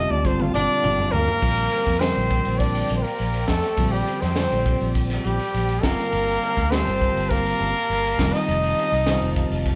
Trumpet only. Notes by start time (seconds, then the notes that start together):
Already playing: D#5
0.11 D5
0.26 C5
0.42 F4
0.54 D5
1.12 A#4
2.00 C5
2.58 D5
2.97 C5
3.02 A#4
3.47 A4
3.92 G4
4.21 C5
5.23 G4
5.83 A#4
6.70 C5
7.30 A#4
8.33 D#5